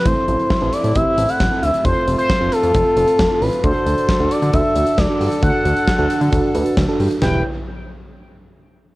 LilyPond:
<<
  \new Staff \with { instrumentName = "Analog synth lead" } { \time 4/4 \key a \dorian \tempo 4 = 134 c''4. d''8 e''8. fis''8. e''8 | c''8. c''8. a'2 b'8 | c''4. d''8 e''4 d''4 | fis''2. r4 |
g''8 r2. r8 | }
  \new Staff \with { instrumentName = "FM electric piano" } { \time 4/4 \key a \dorian <c' e' a'>8 <c' e' a'>8 r16 <c' e' a'>8 r16 <c' e' g'>8 <c' e' a'>8 r16 <c' e' a'>8 r16 | <c' f' a'>8 <c' f' a'>8 r16 <c' f' a'>8 r16 <c' f' a'>8 <c' f' a'>8 r16 <c' f' a'>8 r16 | <d' fis' a'>8 <d' fis' a'>8 r16 <d' fis' a'>8 r16 <d' fis' a'>8 <d' fis' a'>8 r16 <d' fis' a'>8 r16 | <d' fis' a'>8 <d' fis' a'>8 r16 <d' fis' a'>8 r16 <d' fis' a'>8 <d' fis' b'>8 r16 <d' fis' a'>8 r16 |
<e' g' b'>8 r2. r8 | }
  \new Staff \with { instrumentName = "Brass ensemble" } { \time 4/4 \key a \dorian << { <c' e'>1 | <c' f'>1 | <d fis' a'>1~ | <d fis' a'>1 |
<e e' g' b'>8 r2. r8 | } \\ { a1~ | a1 | d'1~ | d'1 |
r1 | } >> }
  \new Staff \with { instrumentName = "Analog synth bass" } { \clef bass \time 4/4 \key a \dorian a,,16 r16 a,,16 r8 a,,16 r16 a,16 a,,16 r16 a,,16 r16 a,,16 r16 d,16 r16 | f,,16 r16 f,,16 r8 f,,16 r16 f,16 f,,16 r16 f,,16 r16 f,,16 r16 a,,16 r16 | d,16 r16 d,16 r8 d,16 r16 d16 d,16 r16 d,16 r16 d,16 r16 g,16 r16 | d,16 r16 d,16 r8 d,16 r16 d16 d,16 r16 d,16 r16 d,16 r16 g,16 r16 |
e,,8 r2. r8 | }
  \new DrumStaff \with { instrumentName = "Drums" } \drummode { \time 4/4 <hh bd>8 hh16 hh16 <bd sn>8 hh16 hh16 <hh bd>8 hh16 hh16 <bd sn>8 hh16 hh16 | <hh bd>8 hh16 hh16 <bd sn>8 hh16 hh16 <hh bd>8 hh16 hh16 <bd sn>8 hho16 hh16 | <hh bd>8 hh16 hh16 <bd sn>8 hh16 hh16 <hh bd>8 hh16 hh16 <bd sn>8 hho16 hh16 | <hh bd>8 hh16 hh16 <bd sn>8 hh16 hh16 <hh bd>8 hh16 hh16 <bd sn>8 hho16 hh16 |
<sn tomfh>4 r4 r4 r4 | }
>>